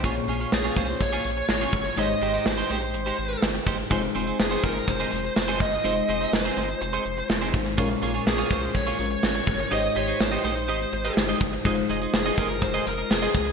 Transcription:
<<
  \new Staff \with { instrumentName = "Lead electric guitar" } { \time 4/4 \key bes \dorian \tempo 4 = 124 r4 aes'8 c''8 des''4 des''4 | ees''4 c''8 c''4. r4 | r4 aes'8 bes'8 c''4 c''8 ees''8~ | ees''4 c''4 c''4 r4 |
r4 aes'8 c''8 des''4 des''4 | ees''8 des''8 c''8 c''4. r4 | r4 aes'8 bes'8 c''8 bes'8 aes'4 | }
  \new Staff \with { instrumentName = "Clean electric guitar" } { \time 4/4 \key bes \dorian <des' f' aes' des''>16 r16 <des' f' aes' des''>16 <des' f' aes' des''>16 r16 <des' f' aes' des''>16 <des' f' aes' des''>16 r8 <des' f' aes' des''>16 r8. <des' f' aes' des''>16 r8 | <aes ees' g' c''>16 r16 <aes ees' g' c''>16 <aes ees' g' c''>16 r16 <aes ees' g' c''>16 <aes ees' g' c''>16 r8 <aes ees' g' c''>16 r4 <aes ees' g' c''>16 r16 | <c' ees' aes' c''>16 r16 <c' ees' aes' c''>16 <c' ees' aes' c''>16 r16 <c' ees' aes' c''>16 <c' ees' aes' c''>16 r8 <c' ees' aes' c''>16 r8. <c' ees' aes' c''>16 r8 | <c' ees' aes' c''>16 r16 <c' ees' aes' c''>16 <c' ees' aes' c''>16 r16 <c' ees' aes' c''>16 <c' ees' aes' c''>16 r8 <c' ees' aes' c''>16 r8. <c' ees' aes' c''>16 r8 |
<bes f' aes' des''>16 r16 <bes f' aes' des''>16 <bes f' aes' des''>16 r16 <bes f' aes' des''>16 <bes f' aes' des''>16 r8 <bes f' aes' des''>16 r4. | <ees' g' c'' ees''>16 r16 <ees' g' c'' ees''>16 <ees' g' c'' ees''>16 r16 <ees' g' c'' ees''>16 <ees' g' c'' ees''>16 r16 <ees' g' c'' ees''>16 r8 <ees' g' c'' ees''>16 r16 <ees' g' c'' ees''>16 r8 | <ees' aes' c'' ees''>16 r16 <ees' aes' c'' ees''>16 <ees' aes' c'' ees''>16 r16 <ees' aes' c'' ees''>16 <ees' aes' c'' ees''>16 r8 <ees' aes' c'' ees''>16 r8. <ees' aes' c'' ees''>16 r8 | }
  \new Staff \with { instrumentName = "FM electric piano" } { \time 4/4 \key bes \dorian <bes f' aes' c'' des''>1 | <aes ees' g' c''>1 | <aes ees' f' c''>1 | <aes ees' f' c''>2.~ <aes ees' f' c''>8 <aes ees' f' c''>8 |
<aes des' f' bes'>2~ <aes des' f' bes'>8 <aes des' f' bes'>4. | <aes ees' g' c''>2. <aes ees' g' c''>4 | <aes ees' f' c''>1 | }
  \new Staff \with { instrumentName = "FM electric piano" } { \clef bass \time 4/4 \key bes \dorian bes,4. r2 r8 | aes,4. r2 r8 | r1 | r1 |
bes,4. r2 r8 | aes,4. r2 r8 | r1 | }
  \new Staff \with { instrumentName = "Analog synth bass" } { \clef bass \time 4/4 \key bes \dorian bes,,8 bes,,8 bes,,8 c,8 bes,,8 bes,,8 aes,,8 g,,8 | aes,,8 aes,,8 aes,,8 bes,,8 aes,,8 aes,,8 g,,8 g,,8 | f,,8 f,,8 f,,8 g,,8 f,,8 f,,8 f,,8 g,,8 | f,,8 f,,8 f,,8 g,,8 f,,8 f,,8 f,,8 aes,,8 |
bes,,8 bes,,8 bes,,8 c,8 bes,,8 bes,,8 aes,,8 g,,8 | aes,,8 aes,,8 aes,,8 bes,,8 aes,,8 aes,,8 g,,8 g,,8 | f,,8 f,,8 f,,8 g,,8 f,,8 f,,8 f,,8 des,8 | }
  \new DrumStaff \with { instrumentName = "Drums" } \drummode { \time 4/4 <hh bd>16 hh16 hh16 hh16 sn16 hh16 <hh bd>16 hh16 <hh bd>16 hh16 hh16 hh16 sn16 hh16 <hh bd>16 hh16 | hh16 hh16 hh16 hh16 sn16 hh16 hh16 hh16 hh16 hh16 hh16 hh16 sn16 hh16 <hh bd>16 hh16 | <hh bd>16 hh16 hh16 hh16 sn16 hh16 <hh bd>16 hh16 <hh bd>16 hh16 hh16 hh16 sn16 hh16 <hh bd>16 hh16 | hh16 hh16 hh16 hh16 sn16 hh16 hh16 hh16 hh16 hh16 hh16 hh16 sn16 hh16 <hh bd>16 hh16 |
<hh bd>16 hh16 hh16 hh16 sn16 hh16 <hh bd>16 hh16 <hh bd>16 hh16 hh16 hh16 sn16 hh16 <hh bd>16 hh16 | hh16 hh16 hh16 hh16 sn16 hh16 hh16 hh16 hh16 hh16 hh16 hh16 sn16 hh16 <hh bd>16 hh16 | <hh bd>16 hh16 hh16 hh16 sn16 hh16 <hh bd>16 hh16 <hh bd>16 hh16 hh16 hh16 sn16 hh16 <hh bd>16 hh16 | }
>>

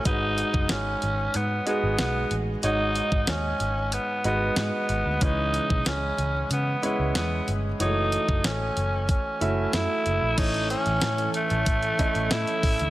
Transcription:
<<
  \new Staff \with { instrumentName = "Analog synth pad" } { \time 4/4 \key gis \phrygian \tempo 4 = 93 r1 | r1 | r1 | r1 |
<e a' cis'' a''>1 | }
  \new Staff \with { instrumentName = "Grand piano" } { \time 4/4 \key gis \phrygian <gis, gis dis' fis' b'>4. r4 <gis dis' fis' gis'>4. | <gis, gis dis' fis' cis''>4. r4 <gis dis' fis' b'>4. | <cis e gis cis' b'>4. r4 <gis cis' e' b'>4. | <e gis a fis' cis''>4. r4 <a e' fis' e''>4. |
<a, e a cis' cis''>4. r4 <a cis' e' dis''>4. | }
  \new Staff \with { instrumentName = "Tenor saxophone" } { \time 4/4 \key gis \phrygian dis'4 cis'4 b8 b8 b8 r8 | dis'4 cis'4 b8 b8 b4 | dis'4 cis'4 b8 b8 b8 r8 | dis'4 cis'4 cis'4 e'4 |
dis'8 cis'4 a4. e'4 | }
  \new Staff \with { instrumentName = "Picked electric bass" } { \clef bass \time 4/4 \key gis \phrygian gis,,8. fis,,16 gis,,8 gis,,8 gis,8 r16 gis,,16 b,,8 a,,8 | gis,,8. gis,,16 dis,8 gis,,8. r16 gis,,8 gis,16 r16 gis,,16 d,16 | cis,8. b,,16 cis,8 cis,8 cis8 r16 cis,16 e,8 g,,8 | fis,,8. fis,,16 a,,8 fis,,8. r16 fis,,8 fis,16 r16 fis,,16 ais,,16 |
a,,8. a,,16 a,8 r16 a,,16 a,8 r16 a,,16 a,16 r16 a,,16 d,16 | }
  \new DrumStaff \with { instrumentName = "Drums" } \drummode { \time 4/4 <hh bd>8 hh16 bd16 <hh sn>8 hh8 hh8 hh8 <hh sn>8 hh8 | hh8 hh16 bd16 <hh sn>8 hh8 hh8 hh8 <hh sn>8 hh8 | <hh bd>8 hh16 bd16 <hh sn>8 hh8 hh8 hh8 <hh sn>8 hh8 | hh8 hh16 bd16 <hh sn>8 hh8 <hh bd>8 hh8 <hh sn>8 hh8 |
<cymc hh bd>16 hh16 hh16 hh16 <hh sn>16 hh16 hh16 hh16 <hh bd>16 hh16 <hh bd>16 hh16 <hh sn>16 hh16 <hho bd>16 hh16 | }
>>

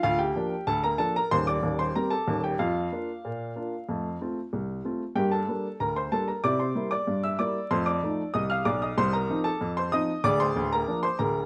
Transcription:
<<
  \new Staff \with { instrumentName = "Upright piano" } { \time 2/4 \key bes \major \tempo 4 = 94 <f' f''>16 <g' g''>8. <a' a''>16 <bes' bes''>16 <a' a''>16 <bes' bes''>16 | <c'' c'''>16 <d'' d'''>8 <c'' c'''>16 <bes' bes''>16 <a' a''>8 <g' g''>16 | <f' f''>2~ | <f' f''>4 r4 |
<g' g''>16 <a' a''>8. <bes' bes''>16 <c'' c'''>16 <a' a''>16 <bes' bes''>16 | <d'' d'''>16 <c'' c'''>8 <d'' d'''>8 <e'' e'''>16 <d'' d'''>8 | <c'' c'''>16 <d'' d'''>8. <ees'' ees'''>16 <f'' f'''>16 <d'' d'''>16 <ees'' ees'''>16 | <c'' c'''>16 <bes' bes''>8 <a' a''>8 <c'' c'''>16 <ees'' ees'''>8 |
<d'' d'''>16 <c'' c'''>8 <bes' bes''>8 <c'' c'''>16 <bes' bes''>8 | }
  \new Staff \with { instrumentName = "Upright piano" } { \clef bass \time 2/4 \key bes \major d,8 <f bes d'>8 d,8 <f bes d'>8 | <ees,, ees,>8 <ees,, ees,>8 <g c' g'>8 <ees,, ees,>8 | f,8 <bes d' f'>8 bes,8 <bes d' f'>8 | <f, a>8 <a c' f'>8 c,8 <a c' f'>8 |
<g, bes>8 <g bes d'>8 d,8 <g bes d'>8 | <c e'>8 <g bes e'>8 g,8 <g bes e'>8 | <f, a>8 <f a ees'>8 c,8 ces,8 | c,8 <f c' ees'>8 f,8 <f c' ees'>8 |
<d,, d,>8 <d,, d,>8 <f bes d'>8 <d,, d,>8 | }
>>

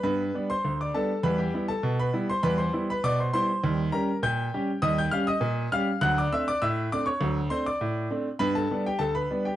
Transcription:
<<
  \new Staff \with { instrumentName = "Grand piano" } { \time 2/4 \key g \major \tempo 4 = 100 <b' b''>8. <c'' c'''>8 <d'' d'''>16 <a' a''>8 | <b' b''>16 <g' g''>8 <a' a''>8 <b' b''>8 <c'' c'''>16 | <b' b''>16 <c'' c'''>8 <b' b''>16 <d'' d'''>16 <c'' c'''>16 <c'' c'''>8~ | <c'' c'''>8 <bes' bes''>8 <g'' g'''>4 |
<ees'' ees'''>16 <g'' g'''>16 <f'' f'''>16 <ees'' ees'''>8. <f'' f'''>8 | <fis'' fis'''>16 <d'' d'''>16 <e'' e'''>16 <d'' d'''>16 <e'' e'''>8 <d'' d'''>16 <cis'' cis'''>16~ | <cis'' cis'''>8 <c'' c'''>16 <d'' d'''>8. r8 | <b' b''>16 <a' a''>8 <g' g''>16 <a' a''>16 <b' b''>8 <g' g''>16 | }
  \new Staff \with { instrumentName = "Grand piano" } { \time 2/4 \key g \major <g, b>8 <g b d'>8 d,8 <g b d'>8 | <e, g>8 <g b e'>8 b,8 <g b e'>8 | <e, g>8 <g b e'>8 b,8 <g b e'>8 | <ees, g>8 <g des' g'>8 bes,8 <g des' g'>8 |
<ees, g>8 <g des' g'>8 bes,8 <g des' g'>8 | <d, fis>8 <a c' d'>8 a,8 <a c' d'>8 | <d, fis>8 <a c' d'>8 a,8 <a c' d'>8 | <g, b>8 <g b d'>8 d,8 <g b d'>8 | }
>>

